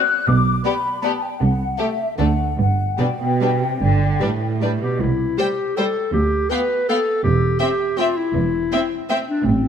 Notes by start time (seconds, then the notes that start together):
Already playing: F#6
0.27 B1 B2 D6
0.65 B3 G4 D5 B5
1.03 B3 G4 D5 A5
1.23 G5
1.40 C2 C3 F#5
1.78 A3 G4 A4 E5
2.18 D2 D3 A3 D4 A4 F#5
2.57 G1 G2 F#5
2.99 B2 G3 D4 B4 G5
3.20 B2
3.41 G3 D4 B4
3.62 C3
3.81 G1 D3
4.21 A2 G3 D4 B4
4.62 G3 D4 B4
4.82 B2 G4
5.01 C2 E4
5.38 G3 G4 C5 G5
5.76 G3 A4 C5 G5
6.13 D2 G4
6.50 B3 B4 F5 G5
6.89 B3 A4 F5 G5
7.24 E1 E2 G4
7.60 C4 G4 E5 G5
7.98 C4 F4 E5 G5
8.17 E4
8.35 E1 E2
8.72 C4 E5 G5
9.09 C4 E5 G5
9.28 D4
9.45 A1 A2 C4